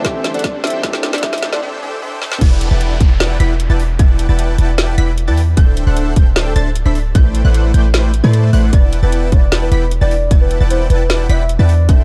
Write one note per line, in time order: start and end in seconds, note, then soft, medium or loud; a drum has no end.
0.00 0.02 E3 medium
0.00 0.79 E3 medium
0.00 0.80 E3 medium
0.00 0.03 A3 medium
0.00 0.81 A3 medium
0.00 0.04 C4 medium
0.00 0.82 C4 medium
0.00 0.05 D4 medium
0.00 1.58 D4 medium
0.00 0.06 G4 medium
0.00 0.82 G4 medium
0.00 riser medium
0.04 0.82 C4 medium
0.04 0.32 D4 medium
0.04 0.82 D4 medium
0.04 0.83 G4 medium
0.04 0.32 A4 medium
0.04 0.32 C5 medium
0.04 0.27 E5 loud
0.04 0.32 E5 medium
0.04 0.32 G5 loud
0.04 kick loud
0.04 snare medium
0.04 closed hi-hat medium
0.24 snare medium
0.24 closed hi-hat medium
0.34 0.61 D4 medium
0.34 0.61 A4 medium
0.34 0.61 C5 medium
0.34 0.57 D5 medium
0.34 0.61 E5 medium
0.34 0.61 F#5 medium
0.34 closed hi-hat medium
0.39 closed hi-hat medium
0.44 kick loud
0.44 snare medium
0.44 closed hi-hat medium
0.64 0.82 D4 medium
0.64 0.82 A4 medium
0.64 0.82 C5 medium
0.64 0.82 E5 medium
0.64 0.82 G5 loud
0.64 snare medium
0.64 closed hi-hat medium
0.67 closed hi-hat medium
0.70 closed hi-hat medium
0.81 1.19 E3 medium
0.81 1.20 A3 medium
0.81 1.21 C4 medium
0.81 1.11 D4 medium
0.81 1.22 D4 medium
0.81 1.22 G4 medium
0.81 1.11 A4 medium
0.81 1.11 C5 medium
0.81 1.06 E5 loud
0.81 1.11 E5 medium
0.81 1.11 G5 loud
0.81 kick loud
0.81 snare medium
0.81 closed hi-hat medium
0.93 snare medium
1.03 snare loud
1.03 closed hi-hat medium
1.13 1.21 D4 medium
1.13 1.21 A4 medium
1.13 1.21 C5 medium
1.13 1.21 D5 medium
1.13 1.21 E5 medium
1.13 1.21 F#5 medium
1.13 snare medium
1.13 closed hi-hat soft
1.18 1.60 E3 medium
1.18 1.60 A3 medium
1.18 closed hi-hat medium
1.23 1.61 C4 medium
1.23 1.50 D4 medium
1.23 1.61 D4 medium
1.23 1.62 G4 medium
1.23 1.50 A4 medium
1.23 1.50 C5 medium
1.23 1.45 E5 loud
1.23 1.50 E5 medium
1.23 1.50 G5 loud
1.23 kick loud
1.23 snare loud
1.23 closed hi-hat medium
1.33 snare medium
1.33 closed hi-hat soft
1.38 closed hi-hat medium
1.43 snare loud
1.43 closed hi-hat medium
1.53 1.61 D4 medium
1.53 1.61 A4 medium
1.53 1.61 C5 medium
1.53 1.61 D5 medium
1.53 1.61 E5 medium
1.53 1.61 F#5 medium
1.53 snare medium
1.62 1.81 D4 loud
1.62 1.81 A4 medium
1.62 1.81 C5 medium
1.62 1.81 E5 medium
1.62 1.81 G5 loud
1.82 2.00 D4 loud
1.82 2.00 A4 medium
1.82 2.00 C5 medium
1.82 2.00 E5 medium
1.82 2.00 G5 loud
2.02 2.20 D4 loud
2.02 2.20 A4 medium
2.02 2.20 C5 medium
2.02 2.20 E5 medium
2.02 2.20 G5 loud
2.22 2.40 D4 loud
2.22 2.40 A4 medium
2.22 2.40 C5 medium
2.22 2.40 E5 medium
2.22 2.40 G5 loud
2.22 snare medium
2.32 snare medium
2.41 2.69 E1 medium
2.41 2.69 E4 medium
2.41 2.69 B4 medium
2.41 2.69 D5 medium
2.41 2.69 F#5 medium
2.41 2.69 G5 medium
2.41 2.69 A5 loud
2.41 2.69 A6 loud
2.41 kick loud
2.41 closed hi-hat medium
2.41 crash loud
2.41 downlifter medium
2.61 closed hi-hat medium
2.71 2.99 E1 medium
2.71 2.98 E4 medium
2.71 2.98 B4 medium
2.71 2.98 D5 medium
2.71 2.98 F#5 medium
2.71 2.98 G5 medium
2.71 2.98 A5 medium
2.71 2.98 A6 medium
2.81 closed hi-hat medium
3.00 3.38 E1 loud
3.00 3.38 E4 loud
3.00 3.38 B4 medium
3.00 3.38 D5 medium
3.00 3.38 F#5 medium
3.00 3.38 G5 medium
3.00 3.38 A5 loud
3.00 3.38 A6 loud
3.00 kick loud
3.00 closed hi-hat medium
3.20 snare loud
3.20 closed hi-hat medium
3.40 3.68 E1 loud
3.40 3.54 E4 loud
3.40 3.54 B4 medium
3.40 3.54 D5 medium
3.40 3.54 F#5 medium
3.40 3.54 G5 medium
3.40 3.54 B5 loud
3.40 3.54 B6 loud
3.40 closed hi-hat medium
3.60 closed hi-hat medium
3.70 3.97 E1 loud
3.70 3.83 E4 medium
3.70 3.83 B4 medium
3.70 3.83 D5 medium
3.70 3.83 F#5 medium
3.70 3.83 G5 medium
3.70 3.83 A5 medium
3.70 3.83 A6 medium
3.80 open hi-hat medium
3.99 4.27 E1 loud
3.99 4.27 E4 medium
3.99 4.27 B4 medium
3.99 4.27 D5 medium
3.99 4.27 F#5 medium
3.99 4.27 G5 medium
3.99 4.27 A5 loud
3.99 4.27 A6 loud
3.99 kick loud
3.99 closed hi-hat medium
4.19 closed hi-hat medium
4.29 4.56 E1 loud
4.29 4.56 E4 medium
4.29 4.56 B4 medium
4.29 4.56 D5 medium
4.29 4.56 F#5 medium
4.29 4.56 G5 medium
4.29 4.56 A5 medium
4.29 4.56 A6 medium
4.39 closed hi-hat medium
4.58 4.96 E1 loud
4.58 4.96 E4 loud
4.58 4.96 B4 medium
4.58 4.96 D5 medium
4.58 4.96 F#5 medium
4.58 4.96 G5 medium
4.58 4.96 A5 loud
4.58 4.96 A6 loud
4.58 closed hi-hat medium
4.78 snare loud
4.78 closed hi-hat medium
4.98 5.29 E1 loud
4.98 5.12 E4 loud
4.98 5.12 B4 medium
4.98 5.12 D5 medium
4.98 5.12 F#5 medium
4.98 5.12 G5 medium
4.98 5.12 B5 loud
4.98 5.12 B6 loud
4.98 closed hi-hat medium
5.18 closed hi-hat medium
5.28 5.55 E2 medium
5.28 5.41 E4 medium
5.28 5.41 B4 medium
5.28 5.41 D5 medium
5.28 5.41 F#5 medium
5.28 5.41 G5 medium
5.28 5.41 A5 medium
5.28 5.41 A6 medium
5.37 open hi-hat medium
5.57 5.85 D1 loud
5.57 5.84 D4 medium
5.57 5.84 A4 medium
5.57 5.84 C5 medium
5.57 5.84 E5 medium
5.57 5.84 G5 loud
5.57 5.84 G6 loud
5.57 kick loud
5.57 closed hi-hat medium
5.77 closed hi-hat medium
5.87 6.14 D1 loud
5.87 6.14 D4 medium
5.87 6.14 A4 medium
5.87 6.14 C5 medium
5.87 6.14 E5 medium
5.87 6.14 F#5 medium
5.87 6.14 F#6 medium
5.97 closed hi-hat medium
6.16 6.54 D1 loud
6.16 6.53 D4 loud
6.16 6.53 A4 medium
6.16 6.53 C5 medium
6.16 6.53 E5 medium
6.16 6.53 G5 loud
6.16 6.53 G6 loud
6.16 kick loud
6.16 closed hi-hat medium
6.36 snare loud
6.36 closed hi-hat medium
6.56 6.84 D1 loud
6.56 6.69 D4 loud
6.56 6.70 A4 medium
6.56 6.70 C5 medium
6.56 6.70 E5 medium
6.56 6.70 A5 loud
6.56 6.70 A6 loud
6.56 closed hi-hat medium
6.76 closed hi-hat medium
6.85 7.13 D1 loud
6.85 6.99 D4 medium
6.85 6.99 A4 medium
6.85 6.99 C5 medium
6.85 6.99 E5 medium
6.85 6.99 B5 medium
6.85 6.99 B6 medium
6.95 open hi-hat medium
7.15 7.43 A1 loud
7.15 7.42 A3 loud
7.15 7.42 E4 medium
7.15 7.42 B4 medium
7.15 7.42 C5 medium
7.15 7.42 D5 medium
7.15 7.42 G5 loud
7.15 7.42 G6 loud
7.15 kick loud
7.15 closed hi-hat medium
7.35 closed hi-hat medium
7.45 7.72 A1 loud
7.45 7.72 A3 medium
7.45 7.72 E4 medium
7.45 7.72 B4 medium
7.45 7.72 C5 medium
7.45 7.72 D5 medium
7.45 7.72 F#5 medium
7.45 7.72 F#6 medium
7.54 closed hi-hat medium
7.74 8.22 A1 loud
7.74 8.11 A3 loud
7.74 8.11 E4 medium
7.74 8.11 B4 medium
7.74 8.11 C5 medium
7.74 8.11 D5 medium
7.74 8.11 G5 loud
7.74 8.11 G6 loud
7.74 closed hi-hat medium
7.94 snare loud
7.94 closed hi-hat medium
8.14 closed hi-hat medium
8.24 8.51 A2 loud
8.24 8.51 A3 medium
8.24 8.51 E4 medium
8.24 8.51 B4 medium
8.24 8.51 C5 medium
8.24 8.51 D5 medium
8.24 8.51 A5 loud
8.24 8.51 A6 loud
8.33 closed hi-hat medium
8.53 8.71 A1 loud
8.53 8.71 A3 medium
8.53 8.71 E4 medium
8.53 8.71 B4 medium
8.53 8.71 C5 medium
8.53 8.71 D5 medium
8.53 8.71 F#5 loud
8.53 8.71 F#6 loud
8.53 open hi-hat medium
8.73 9.01 E1 loud
8.73 9.00 E4 loud
8.73 9.00 B4 medium
8.73 8.95 D5 loud
8.73 9.00 D5 medium
8.73 9.00 F#5 medium
8.73 9.00 G5 medium
8.73 9.00 A5 loud
8.73 9.00 A6 loud
8.73 kick loud
8.73 closed hi-hat medium
8.93 closed hi-hat medium
9.03 9.30 E1 loud
9.03 9.30 E4 medium
9.03 9.30 B4 medium
9.03 9.34 B4 loud
9.03 9.30 D5 medium
9.03 9.30 F#5 medium
9.03 9.30 G5 medium
9.03 9.30 A5 medium
9.03 9.30 A6 medium
9.12 closed hi-hat medium
9.32 9.70 E1 loud
9.32 9.69 E4 loud
9.32 9.69 B4 medium
9.32 9.69 D5 medium
9.32 9.55 D5 loud
9.32 9.69 F#5 medium
9.32 9.69 G5 medium
9.32 9.69 A5 loud
9.32 9.69 A6 loud
9.32 kick loud
9.32 closed hi-hat medium
9.52 snare loud
9.52 closed hi-hat medium
9.62 9.92 B4 loud
9.72 9.99 E1 loud
9.72 9.85 E4 loud
9.72 9.85 B4 medium
9.72 9.85 D5 medium
9.72 9.85 F#5 medium
9.72 9.85 G5 medium
9.72 9.85 B5 loud
9.72 9.85 B6 loud
9.72 closed hi-hat medium
9.91 closed hi-hat medium
10.01 10.29 E1 loud
10.01 10.15 E4 medium
10.01 10.15 B4 medium
10.01 10.15 D5 medium
10.01 10.31 D5 loud
10.01 10.15 F#5 medium
10.01 10.15 G5 medium
10.01 10.15 A5 medium
10.01 10.15 A6 medium
10.11 open hi-hat medium
10.31 10.59 E1 loud
10.31 10.58 E4 medium
10.31 10.58 B4 medium
10.31 10.58 D5 medium
10.31 10.58 F#5 medium
10.31 10.58 G5 medium
10.31 10.58 A5 loud
10.31 10.58 A6 loud
10.31 kick loud
10.31 closed hi-hat medium
10.41 10.63 B4 medium
10.51 closed hi-hat medium
10.61 10.88 E1 loud
10.61 10.88 E4 medium
10.61 10.88 B4 medium
10.61 10.88 D5 medium
10.61 10.88 F#5 medium
10.61 10.88 G5 medium
10.61 10.88 A5 medium
10.61 10.88 A6 medium
10.70 10.85 C5 medium
10.70 closed hi-hat medium
10.90 11.28 E1 loud
10.90 11.27 E4 loud
10.90 11.31 B4 medium
10.90 11.27 B4 medium
10.90 11.27 D5 medium
10.90 11.27 F#5 medium
10.90 11.27 G5 medium
10.90 11.27 A5 loud
10.90 11.27 A6 loud
10.90 closed hi-hat medium
11.10 snare loud
11.10 closed hi-hat medium
11.29 11.57 E1 loud
11.29 11.43 E4 loud
11.29 11.43 B4 medium
11.29 11.43 D5 medium
11.29 11.52 E5 medium
11.29 11.43 F#5 medium
11.29 11.43 G5 medium
11.29 11.43 B5 loud
11.29 11.43 B6 loud
11.29 closed hi-hat medium
11.49 closed hi-hat medium
11.59 11.90 E2 loud
11.59 11.73 E4 medium
11.59 11.73 B4 medium
11.59 11.73 D5 medium
11.59 11.90 D5 loud
11.59 11.73 F#5 medium
11.59 11.73 G5 medium
11.59 11.73 A5 medium
11.59 11.73 A6 medium
11.69 open hi-hat medium
11.89 12.04 D1 loud
11.89 12.04 D4 loud
11.89 12.04 A4 medium
11.89 12.04 C5 medium
11.89 12.04 E5 loud
11.89 12.04 E5 medium
11.89 12.04 G5 loud
11.89 12.04 G6 loud
11.89 kick loud
11.89 closed hi-hat medium